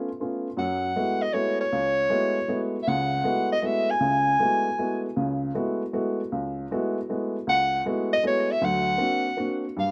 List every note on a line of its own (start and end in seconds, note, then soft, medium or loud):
0.20 0.46 A3 soft
0.20 0.47 B3 soft
0.20 0.47 C#4 soft
0.20 0.47 F4 soft
0.57 0.90 F#2 medium
0.57 0.91 F#3 medium
0.57 1.23 F#5 medium
0.96 1.22 G#3 soft
0.96 1.22 A3 soft
0.96 1.22 B3 soft
0.96 1.23 E4 soft
0.96 1.23 F#4 soft
1.22 1.35 D#5 medium
1.33 1.60 G#3 soft
1.33 1.60 A3 soft
1.33 1.61 B3 soft
1.33 1.61 E4 soft
1.33 1.61 F#4 soft
1.33 1.59 C#5 medium
1.61 2.71 C#5 medium
1.72 2.05 C#2 medium
2.09 2.37 G#3 medium
2.09 2.37 A3 soft
2.09 2.37 B3 soft
2.09 2.37 E4 soft
2.09 2.37 F#4 medium
2.48 2.75 G#3 soft
2.48 2.75 A3 soft
2.48 2.75 B3 soft
2.48 2.75 E4 soft
2.48 2.76 F#4 soft
2.83 2.90 E5 medium
2.87 3.20 C#2 medium
2.87 3.20 C#3 medium
2.87 3.51 F#5 medium
3.24 3.51 G#3 soft
3.24 3.51 A3 soft
3.24 3.52 B3 soft
3.24 3.52 E4 soft
3.24 3.52 F#4 medium
3.52 3.62 D#5 medium
3.62 3.89 G#3 soft
3.62 3.89 A3 soft
3.62 3.89 B3 soft
3.62 3.90 E4 soft
3.62 3.90 F#4 soft
3.62 3.67 D#5 medium
3.62 3.92 E5 medium
3.91 5.04 G#5 loud
4.00 4.34 C#2 medium
4.00 4.34 C#3 medium
4.39 4.66 G#3 medium
4.39 4.66 A3 soft
4.39 4.66 B3 soft
4.39 4.67 E4 soft
4.39 4.67 F#4 medium
4.79 5.05 G#3 soft
4.79 5.05 A3 soft
4.79 5.05 B3 soft
4.79 5.05 E4 soft
4.79 5.05 F#4 medium
5.16 5.49 C#2 medium
5.16 5.50 C#3 medium
5.55 5.81 G#3 soft
5.55 5.81 A3 soft
5.55 5.82 B3 soft
5.55 5.82 E4 soft
5.55 5.82 F#4 medium
5.93 6.20 G#3 soft
5.93 6.20 A3 soft
5.93 6.20 B3 soft
5.93 6.20 E4 soft
5.93 6.20 F#4 medium
6.32 6.65 C#2 medium
6.71 6.97 G#3 medium
6.71 6.97 A3 soft
6.71 6.97 B3 medium
6.71 6.98 E4 soft
6.71 6.97 F#4 medium
7.09 7.35 G#3 soft
7.09 7.35 A3 soft
7.09 7.35 B3 soft
7.09 7.35 E4 soft
7.09 7.36 F#4 soft
7.47 7.80 C#2 medium
7.47 7.83 F#5 loud
7.86 8.11 G#3 medium
7.86 8.12 A3 soft
7.86 8.12 B3 medium
7.86 8.12 E4 soft
7.86 8.12 F#4 medium
8.13 8.23 D#5 medium
8.23 8.49 G#3 soft
8.23 8.50 A3 soft
8.23 8.50 B3 soft
8.23 8.50 E4 soft
8.23 8.50 F#4 soft
8.27 8.53 C#5 medium
8.51 8.66 E5 medium
8.61 8.94 D2 medium
8.61 8.94 F#3 medium
8.61 9.64 F#5 medium
8.98 9.25 A#3 soft
8.98 9.25 C4 soft
8.98 9.25 D4 soft
8.98 9.26 F#4 medium
9.37 9.64 A#3 soft
9.37 9.64 C4 soft
9.37 9.64 D4 soft
9.37 9.64 F#4 medium
9.77 9.91 G2 medium
9.77 9.91 G3 medium
9.77 9.91 F5 medium